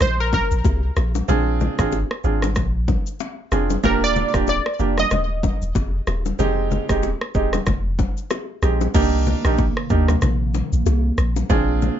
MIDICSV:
0, 0, Header, 1, 6, 480
1, 0, Start_track
1, 0, Tempo, 638298
1, 967, Time_signature, 4, 2, 24, 8
1, 9023, End_track
2, 0, Start_track
2, 0, Title_t, "Synth pluck"
2, 0, Program_c, 0, 84
2, 13, Note_on_c, 0, 72, 97
2, 140, Note_off_c, 0, 72, 0
2, 153, Note_on_c, 0, 70, 84
2, 246, Note_off_c, 0, 70, 0
2, 255, Note_on_c, 0, 70, 85
2, 701, Note_off_c, 0, 70, 0
2, 2896, Note_on_c, 0, 70, 88
2, 3021, Note_off_c, 0, 70, 0
2, 3037, Note_on_c, 0, 74, 101
2, 3368, Note_off_c, 0, 74, 0
2, 3377, Note_on_c, 0, 74, 97
2, 3756, Note_on_c, 0, 75, 107
2, 3762, Note_off_c, 0, 74, 0
2, 4441, Note_off_c, 0, 75, 0
2, 9023, End_track
3, 0, Start_track
3, 0, Title_t, "Grand piano"
3, 0, Program_c, 1, 0
3, 964, Note_on_c, 1, 60, 89
3, 966, Note_on_c, 1, 62, 87
3, 968, Note_on_c, 1, 65, 81
3, 969, Note_on_c, 1, 68, 97
3, 1311, Note_off_c, 1, 60, 0
3, 1312, Note_off_c, 1, 62, 0
3, 1313, Note_off_c, 1, 65, 0
3, 1314, Note_off_c, 1, 68, 0
3, 1344, Note_on_c, 1, 60, 79
3, 1346, Note_on_c, 1, 62, 70
3, 1347, Note_on_c, 1, 65, 69
3, 1348, Note_on_c, 1, 68, 84
3, 1471, Note_off_c, 1, 60, 0
3, 1472, Note_off_c, 1, 62, 0
3, 1473, Note_off_c, 1, 65, 0
3, 1473, Note_off_c, 1, 68, 0
3, 1684, Note_on_c, 1, 60, 69
3, 1686, Note_on_c, 1, 62, 64
3, 1688, Note_on_c, 1, 65, 63
3, 1689, Note_on_c, 1, 68, 74
3, 1843, Note_off_c, 1, 60, 0
3, 1844, Note_off_c, 1, 62, 0
3, 1845, Note_off_c, 1, 65, 0
3, 1845, Note_off_c, 1, 68, 0
3, 2644, Note_on_c, 1, 60, 73
3, 2646, Note_on_c, 1, 62, 67
3, 2648, Note_on_c, 1, 65, 65
3, 2649, Note_on_c, 1, 68, 81
3, 2803, Note_off_c, 1, 60, 0
3, 2804, Note_off_c, 1, 62, 0
3, 2805, Note_off_c, 1, 65, 0
3, 2805, Note_off_c, 1, 68, 0
3, 2883, Note_on_c, 1, 58, 92
3, 2884, Note_on_c, 1, 62, 83
3, 2886, Note_on_c, 1, 65, 86
3, 2888, Note_on_c, 1, 67, 101
3, 3231, Note_off_c, 1, 58, 0
3, 3231, Note_off_c, 1, 62, 0
3, 3232, Note_off_c, 1, 65, 0
3, 3233, Note_off_c, 1, 67, 0
3, 3262, Note_on_c, 1, 58, 73
3, 3264, Note_on_c, 1, 62, 71
3, 3265, Note_on_c, 1, 65, 72
3, 3268, Note_on_c, 1, 67, 85
3, 3390, Note_off_c, 1, 58, 0
3, 3391, Note_off_c, 1, 62, 0
3, 3392, Note_off_c, 1, 65, 0
3, 3393, Note_off_c, 1, 67, 0
3, 3604, Note_on_c, 1, 58, 71
3, 3605, Note_on_c, 1, 62, 63
3, 3607, Note_on_c, 1, 65, 64
3, 3608, Note_on_c, 1, 67, 75
3, 3763, Note_off_c, 1, 58, 0
3, 3763, Note_off_c, 1, 62, 0
3, 3764, Note_off_c, 1, 65, 0
3, 3765, Note_off_c, 1, 67, 0
3, 4804, Note_on_c, 1, 56, 95
3, 4804, Note_on_c, 1, 60, 82
3, 4806, Note_on_c, 1, 63, 84
3, 4808, Note_on_c, 1, 67, 100
3, 5151, Note_off_c, 1, 56, 0
3, 5151, Note_off_c, 1, 60, 0
3, 5152, Note_off_c, 1, 63, 0
3, 5153, Note_off_c, 1, 67, 0
3, 5184, Note_on_c, 1, 56, 75
3, 5185, Note_on_c, 1, 60, 70
3, 5186, Note_on_c, 1, 63, 72
3, 5188, Note_on_c, 1, 67, 80
3, 5311, Note_off_c, 1, 56, 0
3, 5312, Note_off_c, 1, 60, 0
3, 5312, Note_off_c, 1, 63, 0
3, 5313, Note_off_c, 1, 67, 0
3, 5524, Note_on_c, 1, 56, 73
3, 5526, Note_on_c, 1, 60, 63
3, 5527, Note_on_c, 1, 63, 66
3, 5528, Note_on_c, 1, 67, 75
3, 5683, Note_off_c, 1, 56, 0
3, 5684, Note_off_c, 1, 60, 0
3, 5684, Note_off_c, 1, 63, 0
3, 5685, Note_off_c, 1, 67, 0
3, 6485, Note_on_c, 1, 56, 71
3, 6486, Note_on_c, 1, 60, 64
3, 6488, Note_on_c, 1, 63, 62
3, 6489, Note_on_c, 1, 67, 77
3, 6643, Note_off_c, 1, 56, 0
3, 6644, Note_off_c, 1, 60, 0
3, 6645, Note_off_c, 1, 63, 0
3, 6646, Note_off_c, 1, 67, 0
3, 6725, Note_on_c, 1, 58, 91
3, 6727, Note_on_c, 1, 62, 82
3, 6728, Note_on_c, 1, 63, 84
3, 6730, Note_on_c, 1, 67, 105
3, 7072, Note_off_c, 1, 58, 0
3, 7073, Note_off_c, 1, 62, 0
3, 7073, Note_off_c, 1, 63, 0
3, 7074, Note_off_c, 1, 67, 0
3, 7105, Note_on_c, 1, 58, 79
3, 7106, Note_on_c, 1, 62, 70
3, 7108, Note_on_c, 1, 63, 69
3, 7109, Note_on_c, 1, 67, 84
3, 7231, Note_off_c, 1, 58, 0
3, 7232, Note_off_c, 1, 62, 0
3, 7233, Note_off_c, 1, 63, 0
3, 7234, Note_off_c, 1, 67, 0
3, 7444, Note_on_c, 1, 58, 74
3, 7446, Note_on_c, 1, 62, 63
3, 7448, Note_on_c, 1, 63, 67
3, 7449, Note_on_c, 1, 67, 79
3, 7603, Note_off_c, 1, 58, 0
3, 7604, Note_off_c, 1, 62, 0
3, 7605, Note_off_c, 1, 63, 0
3, 7605, Note_off_c, 1, 67, 0
3, 8645, Note_on_c, 1, 60, 94
3, 8646, Note_on_c, 1, 62, 88
3, 8647, Note_on_c, 1, 65, 80
3, 8649, Note_on_c, 1, 68, 97
3, 8991, Note_off_c, 1, 60, 0
3, 8992, Note_off_c, 1, 62, 0
3, 8993, Note_off_c, 1, 65, 0
3, 8994, Note_off_c, 1, 68, 0
3, 9023, End_track
4, 0, Start_track
4, 0, Title_t, "Analog synth pad"
4, 0, Program_c, 2, 89
4, 6726, Note_on_c, 2, 48, 74
4, 6726, Note_on_c, 2, 51, 82
4, 6727, Note_on_c, 2, 58, 70
4, 8627, Note_off_c, 2, 48, 0
4, 8627, Note_off_c, 2, 51, 0
4, 8628, Note_off_c, 2, 58, 0
4, 8645, Note_on_c, 2, 62, 87
4, 8646, Note_on_c, 2, 56, 77
4, 8646, Note_on_c, 2, 58, 71
4, 9023, Note_off_c, 2, 56, 0
4, 9023, Note_off_c, 2, 58, 0
4, 9023, Note_off_c, 2, 62, 0
4, 9023, End_track
5, 0, Start_track
5, 0, Title_t, "Sub bass"
5, 0, Program_c, 3, 38
5, 6, Note_on_c, 3, 34, 97
5, 308, Note_off_c, 3, 34, 0
5, 386, Note_on_c, 3, 34, 93
5, 466, Note_off_c, 3, 34, 0
5, 486, Note_on_c, 3, 36, 89
5, 677, Note_off_c, 3, 36, 0
5, 727, Note_on_c, 3, 34, 93
5, 918, Note_off_c, 3, 34, 0
5, 967, Note_on_c, 3, 34, 108
5, 1268, Note_off_c, 3, 34, 0
5, 1346, Note_on_c, 3, 32, 94
5, 1537, Note_off_c, 3, 32, 0
5, 1686, Note_on_c, 3, 32, 92
5, 1928, Note_on_c, 3, 34, 114
5, 1939, Note_off_c, 3, 32, 0
5, 2229, Note_off_c, 3, 34, 0
5, 2646, Note_on_c, 3, 29, 94
5, 2837, Note_off_c, 3, 29, 0
5, 2886, Note_on_c, 3, 27, 106
5, 3188, Note_off_c, 3, 27, 0
5, 3265, Note_on_c, 3, 26, 99
5, 3457, Note_off_c, 3, 26, 0
5, 3607, Note_on_c, 3, 29, 95
5, 3798, Note_off_c, 3, 29, 0
5, 3846, Note_on_c, 3, 27, 104
5, 4148, Note_off_c, 3, 27, 0
5, 4226, Note_on_c, 3, 27, 88
5, 4306, Note_off_c, 3, 27, 0
5, 4326, Note_on_c, 3, 29, 90
5, 4517, Note_off_c, 3, 29, 0
5, 4567, Note_on_c, 3, 27, 93
5, 4758, Note_off_c, 3, 27, 0
5, 4807, Note_on_c, 3, 29, 99
5, 5108, Note_off_c, 3, 29, 0
5, 5186, Note_on_c, 3, 27, 89
5, 5377, Note_off_c, 3, 27, 0
5, 5526, Note_on_c, 3, 27, 81
5, 5717, Note_off_c, 3, 27, 0
5, 5768, Note_on_c, 3, 29, 117
5, 6069, Note_off_c, 3, 29, 0
5, 6486, Note_on_c, 3, 34, 96
5, 6677, Note_off_c, 3, 34, 0
5, 6727, Note_on_c, 3, 36, 102
5, 7029, Note_off_c, 3, 36, 0
5, 7105, Note_on_c, 3, 34, 92
5, 7296, Note_off_c, 3, 34, 0
5, 7447, Note_on_c, 3, 39, 94
5, 7638, Note_off_c, 3, 39, 0
5, 7687, Note_on_c, 3, 34, 100
5, 7989, Note_off_c, 3, 34, 0
5, 8066, Note_on_c, 3, 34, 92
5, 8146, Note_off_c, 3, 34, 0
5, 8167, Note_on_c, 3, 36, 95
5, 8358, Note_off_c, 3, 36, 0
5, 8407, Note_on_c, 3, 34, 96
5, 8598, Note_off_c, 3, 34, 0
5, 8647, Note_on_c, 3, 34, 110
5, 8949, Note_off_c, 3, 34, 0
5, 9023, End_track
6, 0, Start_track
6, 0, Title_t, "Drums"
6, 2, Note_on_c, 9, 82, 75
6, 4, Note_on_c, 9, 37, 91
6, 15, Note_on_c, 9, 64, 70
6, 77, Note_off_c, 9, 82, 0
6, 80, Note_off_c, 9, 37, 0
6, 91, Note_off_c, 9, 64, 0
6, 247, Note_on_c, 9, 36, 102
6, 247, Note_on_c, 9, 82, 50
6, 250, Note_on_c, 9, 61, 75
6, 322, Note_off_c, 9, 36, 0
6, 322, Note_off_c, 9, 82, 0
6, 325, Note_off_c, 9, 61, 0
6, 386, Note_on_c, 9, 82, 79
6, 461, Note_off_c, 9, 82, 0
6, 486, Note_on_c, 9, 36, 92
6, 486, Note_on_c, 9, 82, 72
6, 491, Note_on_c, 9, 60, 86
6, 561, Note_off_c, 9, 36, 0
6, 561, Note_off_c, 9, 82, 0
6, 566, Note_off_c, 9, 60, 0
6, 726, Note_on_c, 9, 82, 61
6, 727, Note_on_c, 9, 37, 85
6, 735, Note_on_c, 9, 60, 56
6, 801, Note_off_c, 9, 82, 0
6, 802, Note_off_c, 9, 37, 0
6, 810, Note_off_c, 9, 60, 0
6, 865, Note_on_c, 9, 82, 79
6, 866, Note_on_c, 9, 61, 77
6, 941, Note_off_c, 9, 61, 0
6, 941, Note_off_c, 9, 82, 0
6, 967, Note_on_c, 9, 82, 78
6, 972, Note_on_c, 9, 64, 83
6, 1042, Note_off_c, 9, 82, 0
6, 1048, Note_off_c, 9, 64, 0
6, 1208, Note_on_c, 9, 82, 45
6, 1210, Note_on_c, 9, 64, 75
6, 1283, Note_off_c, 9, 82, 0
6, 1286, Note_off_c, 9, 64, 0
6, 1344, Note_on_c, 9, 37, 89
6, 1345, Note_on_c, 9, 82, 81
6, 1346, Note_on_c, 9, 36, 94
6, 1419, Note_off_c, 9, 37, 0
6, 1420, Note_off_c, 9, 82, 0
6, 1422, Note_off_c, 9, 36, 0
6, 1444, Note_on_c, 9, 82, 63
6, 1448, Note_on_c, 9, 60, 76
6, 1519, Note_off_c, 9, 82, 0
6, 1523, Note_off_c, 9, 60, 0
6, 1586, Note_on_c, 9, 37, 92
6, 1662, Note_off_c, 9, 37, 0
6, 1685, Note_on_c, 9, 82, 50
6, 1760, Note_off_c, 9, 82, 0
6, 1823, Note_on_c, 9, 37, 90
6, 1826, Note_on_c, 9, 82, 72
6, 1832, Note_on_c, 9, 61, 71
6, 1898, Note_off_c, 9, 37, 0
6, 1902, Note_off_c, 9, 82, 0
6, 1907, Note_off_c, 9, 61, 0
6, 1922, Note_on_c, 9, 82, 76
6, 1924, Note_on_c, 9, 37, 90
6, 1928, Note_on_c, 9, 36, 95
6, 1934, Note_on_c, 9, 64, 67
6, 1997, Note_off_c, 9, 82, 0
6, 2000, Note_off_c, 9, 37, 0
6, 2003, Note_off_c, 9, 36, 0
6, 2009, Note_off_c, 9, 64, 0
6, 2167, Note_on_c, 9, 36, 98
6, 2167, Note_on_c, 9, 82, 50
6, 2169, Note_on_c, 9, 61, 70
6, 2242, Note_off_c, 9, 36, 0
6, 2243, Note_off_c, 9, 82, 0
6, 2244, Note_off_c, 9, 61, 0
6, 2306, Note_on_c, 9, 82, 74
6, 2381, Note_off_c, 9, 82, 0
6, 2406, Note_on_c, 9, 82, 70
6, 2409, Note_on_c, 9, 60, 89
6, 2481, Note_off_c, 9, 82, 0
6, 2485, Note_off_c, 9, 60, 0
6, 2646, Note_on_c, 9, 37, 82
6, 2646, Note_on_c, 9, 82, 59
6, 2654, Note_on_c, 9, 60, 59
6, 2721, Note_off_c, 9, 37, 0
6, 2721, Note_off_c, 9, 82, 0
6, 2729, Note_off_c, 9, 60, 0
6, 2784, Note_on_c, 9, 82, 79
6, 2786, Note_on_c, 9, 61, 75
6, 2859, Note_off_c, 9, 82, 0
6, 2861, Note_off_c, 9, 61, 0
6, 2884, Note_on_c, 9, 82, 77
6, 2886, Note_on_c, 9, 36, 101
6, 2892, Note_on_c, 9, 64, 80
6, 2959, Note_off_c, 9, 82, 0
6, 2961, Note_off_c, 9, 36, 0
6, 2967, Note_off_c, 9, 64, 0
6, 3127, Note_on_c, 9, 82, 44
6, 3130, Note_on_c, 9, 64, 75
6, 3202, Note_off_c, 9, 82, 0
6, 3205, Note_off_c, 9, 64, 0
6, 3263, Note_on_c, 9, 37, 92
6, 3264, Note_on_c, 9, 82, 75
6, 3266, Note_on_c, 9, 36, 99
6, 3338, Note_off_c, 9, 37, 0
6, 3339, Note_off_c, 9, 82, 0
6, 3341, Note_off_c, 9, 36, 0
6, 3364, Note_on_c, 9, 82, 65
6, 3367, Note_on_c, 9, 60, 76
6, 3439, Note_off_c, 9, 82, 0
6, 3443, Note_off_c, 9, 60, 0
6, 3505, Note_on_c, 9, 37, 92
6, 3580, Note_off_c, 9, 37, 0
6, 3604, Note_on_c, 9, 82, 52
6, 3680, Note_off_c, 9, 82, 0
6, 3742, Note_on_c, 9, 37, 87
6, 3746, Note_on_c, 9, 82, 69
6, 3752, Note_on_c, 9, 61, 69
6, 3817, Note_off_c, 9, 37, 0
6, 3821, Note_off_c, 9, 82, 0
6, 3828, Note_off_c, 9, 61, 0
6, 3842, Note_on_c, 9, 82, 75
6, 3844, Note_on_c, 9, 37, 92
6, 3855, Note_on_c, 9, 64, 75
6, 3917, Note_off_c, 9, 82, 0
6, 3920, Note_off_c, 9, 37, 0
6, 3930, Note_off_c, 9, 64, 0
6, 4086, Note_on_c, 9, 36, 96
6, 4087, Note_on_c, 9, 82, 51
6, 4090, Note_on_c, 9, 61, 75
6, 4161, Note_off_c, 9, 36, 0
6, 4162, Note_off_c, 9, 82, 0
6, 4165, Note_off_c, 9, 61, 0
6, 4225, Note_on_c, 9, 82, 76
6, 4301, Note_off_c, 9, 82, 0
6, 4326, Note_on_c, 9, 36, 90
6, 4326, Note_on_c, 9, 82, 72
6, 4330, Note_on_c, 9, 60, 88
6, 4401, Note_off_c, 9, 36, 0
6, 4401, Note_off_c, 9, 82, 0
6, 4406, Note_off_c, 9, 60, 0
6, 4566, Note_on_c, 9, 82, 59
6, 4567, Note_on_c, 9, 37, 83
6, 4575, Note_on_c, 9, 60, 54
6, 4642, Note_off_c, 9, 37, 0
6, 4642, Note_off_c, 9, 82, 0
6, 4650, Note_off_c, 9, 60, 0
6, 4705, Note_on_c, 9, 82, 81
6, 4706, Note_on_c, 9, 61, 73
6, 4781, Note_off_c, 9, 61, 0
6, 4781, Note_off_c, 9, 82, 0
6, 4807, Note_on_c, 9, 82, 78
6, 4812, Note_on_c, 9, 64, 78
6, 4882, Note_off_c, 9, 82, 0
6, 4887, Note_off_c, 9, 64, 0
6, 5048, Note_on_c, 9, 82, 46
6, 5050, Note_on_c, 9, 64, 74
6, 5123, Note_off_c, 9, 82, 0
6, 5125, Note_off_c, 9, 64, 0
6, 5184, Note_on_c, 9, 37, 88
6, 5185, Note_on_c, 9, 82, 78
6, 5186, Note_on_c, 9, 36, 93
6, 5259, Note_off_c, 9, 37, 0
6, 5260, Note_off_c, 9, 82, 0
6, 5261, Note_off_c, 9, 36, 0
6, 5285, Note_on_c, 9, 82, 64
6, 5287, Note_on_c, 9, 60, 76
6, 5360, Note_off_c, 9, 82, 0
6, 5363, Note_off_c, 9, 60, 0
6, 5425, Note_on_c, 9, 37, 93
6, 5500, Note_off_c, 9, 37, 0
6, 5524, Note_on_c, 9, 82, 51
6, 5526, Note_on_c, 9, 36, 87
6, 5600, Note_off_c, 9, 82, 0
6, 5602, Note_off_c, 9, 36, 0
6, 5662, Note_on_c, 9, 37, 89
6, 5666, Note_on_c, 9, 82, 69
6, 5673, Note_on_c, 9, 61, 71
6, 5737, Note_off_c, 9, 37, 0
6, 5741, Note_off_c, 9, 82, 0
6, 5748, Note_off_c, 9, 61, 0
6, 5762, Note_on_c, 9, 82, 73
6, 5765, Note_on_c, 9, 37, 90
6, 5768, Note_on_c, 9, 36, 96
6, 5775, Note_on_c, 9, 64, 72
6, 5838, Note_off_c, 9, 82, 0
6, 5840, Note_off_c, 9, 37, 0
6, 5843, Note_off_c, 9, 36, 0
6, 5850, Note_off_c, 9, 64, 0
6, 6007, Note_on_c, 9, 36, 95
6, 6008, Note_on_c, 9, 82, 50
6, 6010, Note_on_c, 9, 61, 75
6, 6082, Note_off_c, 9, 36, 0
6, 6084, Note_off_c, 9, 82, 0
6, 6086, Note_off_c, 9, 61, 0
6, 6146, Note_on_c, 9, 82, 77
6, 6221, Note_off_c, 9, 82, 0
6, 6246, Note_on_c, 9, 37, 93
6, 6246, Note_on_c, 9, 82, 71
6, 6250, Note_on_c, 9, 60, 81
6, 6321, Note_off_c, 9, 37, 0
6, 6322, Note_off_c, 9, 82, 0
6, 6325, Note_off_c, 9, 60, 0
6, 6486, Note_on_c, 9, 82, 59
6, 6487, Note_on_c, 9, 37, 82
6, 6495, Note_on_c, 9, 60, 57
6, 6562, Note_off_c, 9, 37, 0
6, 6562, Note_off_c, 9, 82, 0
6, 6570, Note_off_c, 9, 60, 0
6, 6626, Note_on_c, 9, 82, 79
6, 6627, Note_on_c, 9, 60, 55
6, 6627, Note_on_c, 9, 61, 73
6, 6701, Note_off_c, 9, 82, 0
6, 6702, Note_off_c, 9, 60, 0
6, 6702, Note_off_c, 9, 61, 0
6, 6726, Note_on_c, 9, 82, 75
6, 6727, Note_on_c, 9, 36, 100
6, 6727, Note_on_c, 9, 49, 91
6, 6734, Note_on_c, 9, 64, 84
6, 6802, Note_off_c, 9, 49, 0
6, 6802, Note_off_c, 9, 82, 0
6, 6803, Note_off_c, 9, 36, 0
6, 6809, Note_off_c, 9, 64, 0
6, 6968, Note_on_c, 9, 82, 45
6, 6971, Note_on_c, 9, 64, 73
6, 7043, Note_off_c, 9, 82, 0
6, 7046, Note_off_c, 9, 64, 0
6, 7104, Note_on_c, 9, 37, 88
6, 7105, Note_on_c, 9, 82, 79
6, 7179, Note_off_c, 9, 37, 0
6, 7180, Note_off_c, 9, 82, 0
6, 7204, Note_on_c, 9, 82, 64
6, 7208, Note_on_c, 9, 36, 95
6, 7209, Note_on_c, 9, 60, 76
6, 7279, Note_off_c, 9, 82, 0
6, 7283, Note_off_c, 9, 36, 0
6, 7284, Note_off_c, 9, 60, 0
6, 7346, Note_on_c, 9, 37, 92
6, 7421, Note_off_c, 9, 37, 0
6, 7445, Note_on_c, 9, 82, 51
6, 7447, Note_on_c, 9, 36, 91
6, 7521, Note_off_c, 9, 82, 0
6, 7522, Note_off_c, 9, 36, 0
6, 7584, Note_on_c, 9, 37, 90
6, 7587, Note_on_c, 9, 82, 74
6, 7593, Note_on_c, 9, 61, 70
6, 7659, Note_off_c, 9, 37, 0
6, 7662, Note_off_c, 9, 82, 0
6, 7669, Note_off_c, 9, 61, 0
6, 7683, Note_on_c, 9, 82, 74
6, 7686, Note_on_c, 9, 37, 89
6, 7695, Note_on_c, 9, 64, 72
6, 7759, Note_off_c, 9, 82, 0
6, 7761, Note_off_c, 9, 37, 0
6, 7770, Note_off_c, 9, 64, 0
6, 7928, Note_on_c, 9, 82, 50
6, 7930, Note_on_c, 9, 61, 76
6, 8004, Note_off_c, 9, 82, 0
6, 8005, Note_off_c, 9, 61, 0
6, 8068, Note_on_c, 9, 82, 73
6, 8143, Note_off_c, 9, 82, 0
6, 8168, Note_on_c, 9, 82, 73
6, 8171, Note_on_c, 9, 60, 84
6, 8243, Note_off_c, 9, 82, 0
6, 8246, Note_off_c, 9, 60, 0
6, 8407, Note_on_c, 9, 37, 87
6, 8407, Note_on_c, 9, 82, 58
6, 8482, Note_off_c, 9, 37, 0
6, 8482, Note_off_c, 9, 82, 0
6, 8546, Note_on_c, 9, 60, 54
6, 8546, Note_on_c, 9, 61, 74
6, 8546, Note_on_c, 9, 82, 79
6, 8621, Note_off_c, 9, 60, 0
6, 8621, Note_off_c, 9, 61, 0
6, 8621, Note_off_c, 9, 82, 0
6, 8647, Note_on_c, 9, 36, 99
6, 8647, Note_on_c, 9, 82, 77
6, 8653, Note_on_c, 9, 64, 83
6, 8722, Note_off_c, 9, 36, 0
6, 8722, Note_off_c, 9, 82, 0
6, 8728, Note_off_c, 9, 64, 0
6, 8888, Note_on_c, 9, 82, 45
6, 8890, Note_on_c, 9, 64, 76
6, 8963, Note_off_c, 9, 82, 0
6, 8965, Note_off_c, 9, 64, 0
6, 9023, End_track
0, 0, End_of_file